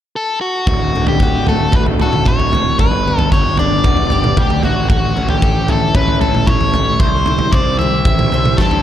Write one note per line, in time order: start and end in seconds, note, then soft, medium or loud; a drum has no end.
0.16 0.41 A4 medium
0.41 0.67 F#4 medium
0.67 0.91 D1 medium
0.67 2.01 D2 medium
0.67 1.08 F#4 medium
0.67 kick loud
0.67 floor tom medium
0.95 1.18 D1 medium
0.95 1.74 D3 medium
1.07 1.45 G4 medium
1.07 floor tom medium
1.20 1.67 D1 medium
1.20 2.01 F#4 medium
1.20 kick loud
1.47 2.27 A3 medium
1.47 1.76 A4 medium
1.47 floor tom medium
1.72 1.97 D1 medium
1.72 2.81 D3 medium
1.72 1.82 B4 medium
1.72 kick loud
1.72 floor tom medium
1.86 floor tom medium
2.00 2.24 D1 medium
2.00 2.81 F#4 medium
2.00 2.28 A4 medium
2.00 floor tom medium
2.13 mid tom medium
2.26 2.73 D1 medium
2.26 2.80 A3 medium
2.26 2.79 C#5 medium
2.26 kick medium
2.26 mid tom medium
2.40 floor tom medium
2.53 2.80 A2 medium
2.53 floor tom medium
2.79 3.26 G1 medium
2.79 4.12 G2 medium
2.79 3.29 B4 medium
2.79 kick loud
2.79 floor tom medium
3.08 3.84 B3 medium
3.19 floor tom medium
3.32 3.55 G1 medium
3.32 4.10 G4 medium
3.32 3.57 C#5 medium
3.32 kick medium
3.57 3.83 G1 medium
3.57 4.37 D4 medium
3.57 4.41 D5 medium
3.57 floor tom medium
3.84 4.08 E1 medium
3.84 4.64 B3 medium
3.84 kick loud
3.84 floor tom medium
3.97 floor tom medium
4.10 4.35 G1 medium
4.10 4.64 G4 medium
4.10 floor tom medium
4.24 mid tom medium
4.37 4.61 D2 medium
4.37 4.65 D4 medium
4.37 4.64 G4 medium
4.37 kick medium
4.37 mid tom medium
4.50 floor tom medium
4.63 4.87 A1 medium
4.63 4.90 A2 medium
4.63 4.89 F#4 medium
4.63 floor tom medium
4.90 5.13 A1 medium
4.90 6.23 A2 medium
4.90 5.30 F#4 medium
4.90 kick medium
4.90 floor tom medium
5.17 5.40 A1 medium
5.17 5.94 C#4 medium
5.29 5.71 G4 medium
5.29 floor tom medium
5.42 5.89 A1 medium
5.42 6.20 A4 medium
5.42 kick loud
5.68 6.47 E4 medium
5.68 5.95 A4 medium
5.68 floor tom medium
5.95 6.18 A1 medium
5.95 7.01 C#4 medium
5.95 6.20 B4 medium
5.95 kick loud
5.95 floor tom medium
6.08 floor tom medium
6.21 6.45 A1 medium
6.21 6.49 A4 medium
6.21 7.01 A4 medium
6.21 floor tom medium
6.34 mid tom medium
6.47 6.94 A1 medium
6.47 7.01 E4 medium
6.47 7.02 C#5 medium
6.47 kick medium
6.47 mid tom medium
6.61 floor tom medium
6.74 7.01 A3 medium
6.74 floor tom medium
7.00 7.46 C2 medium
7.00 8.32 C3 medium
7.00 7.55 C5 medium
7.00 kick loud
7.00 floor tom medium
7.26 8.06 E4 medium
7.26 floor tom medium
7.39 floor tom medium
7.52 7.76 C2 medium
7.52 8.33 C5 medium
7.52 7.78 D5 medium
7.52 kick loud
7.79 8.02 C2 medium
7.79 8.59 G4 medium
7.79 8.61 E5 medium
7.79 floor tom medium
8.05 8.29 A1 medium
8.05 8.82 E4 medium
8.05 kick loud
8.05 floor tom medium
8.19 floor tom medium
8.19 mid tom medium
8.32 8.55 C2 medium
8.32 8.82 C5 medium
8.32 floor tom medium
8.45 mid tom medium
8.57 8.82 G2 medium
8.57 8.82 G4 medium
8.57 8.82 A4 medium
8.57 kick medium
8.57 snare medium
8.71 floor tom medium